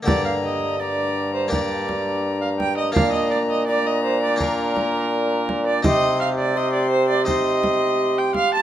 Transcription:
0.03 harpsichord D3 A#3 G4, viola D5
0.07 harpsichord G2, trombone G2, bassoon D4, recorder A#5, frame drum
0.25 viola F5
0.44 viola D#5
0.80 bassoon D4, viola D5, recorder A#5
1.35 viola C5
1.48 harpsichord A#3 D4 G4, recorder A#5
1.52 bassoon D4, viola D5, frame drum
1.89 frame drum
2.42 viola F5
2.59 viola G5, frame drum
2.78 viola D#5
2.92 harpsichord A#2 A#3 D4 F4, viola F5, recorder A#5
2.96 trombone A#2, bassoon D4, frame drum
3.13 viola D#5
3.31 viola D5
3.50 viola D#5
3.67 bassoon D4, viola D5, recorder A#5
3.86 viola D#5
4.05 viola C5
4.23 viola D5
4.36 harpsichord A#3 D4 F4, bassoon D4, recorder A#5
4.40 viola A#4, frame drum
4.77 frame drum
5.49 frame drum
5.67 viola D5
5.82 harpsichord C3 D#4 C5, trombone C3, bassoon G4, viola D#5, recorder C6, frame drum
6.21 viola F5
6.39 viola D5
6.55 bassoon G4, viola D#5, recorder C6
6.73 viola D5
6.91 viola C5
7.09 viola D5
7.25 harpsichord D#4 C5, bassoon G4, viola D#5, recorder C6, frame drum
7.63 frame drum
8.18 viola G5
8.34 viola F5, frame drum
8.55 viola A5

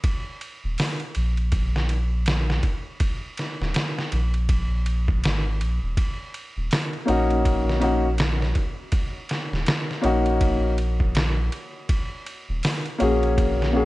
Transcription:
0.04 kick, ride
0.41 ride
0.64 sub bass D#1
0.78 snare, open hi-hat
1.00 ride
1.15 sub bass A#1, ride
1.37 ride
1.52 kick, ride
1.76 snare
1.89 ride
2.26 snare, ride
2.50 snare
2.63 kick, ride
3.00 kick, ride
3.37 snare, ride
3.60 sub bass D#1, snare
3.74 snare, ride
3.98 snare
4.12 sub bass A#1, ride
4.34 ride
4.49 kick, ride
4.86 ride
5.08 kick
5.24 sub bass G#1, snare, ride
5.60 sub bass A#1, ride
5.83 sub bass D#1
5.97 kick, ride
6.34 ride
6.57 sub bass D#1
6.71 snare, open hi-hat
6.93 ride
7.05 sub bass A#1, upright piano A#3 C#4 D#4 F#4, ride
7.30 ride
7.45 kick, ride
7.69 snare
7.80 upright piano A#3 C#4 D#4 F#4, ride
8.18 snare, ride
8.42 snare
8.55 kick, ride
8.92 kick, ride
9.29 snare, ride
9.52 sub bass D#1, snare
9.66 snare, ride
9.91 snare
10.02 sub bass A#1, upright piano A#3 C#4 D#4, ride
10.06 upright piano F#4
10.26 ride
10.41 kick, ride
10.78 ride
11.00 kick
11.15 snare, ride
11.52 ride
11.89 kick, ride
12.26 ride
12.49 sub bass D#1
12.63 snare, open hi-hat
12.86 ride
12.99 sub bass A#1, upright piano A#3 C#4 F#4, ride
13.03 upright piano G#4
13.23 ride
13.38 kick, ride
13.62 snare
13.72 upright piano A#3 C#4 F#4
13.77 upright piano G#4

